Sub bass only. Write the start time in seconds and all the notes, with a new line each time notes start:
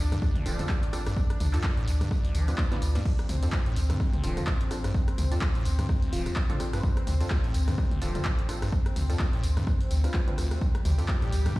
0.00 D2
0.45 D1
0.93 A1
1.40 D2
1.87 D2
2.35 D2
2.82 D2
3.29 D2
3.76 D2
4.24 D1
4.71 A1
5.18 D2
5.65 D2
6.12 D1
6.60 A1
7.07 D2
7.54 D2
8.02 D1
8.49 A1
8.96 D2
9.43 D2
9.91 D2
10.38 D2
10.85 D2
11.32 D2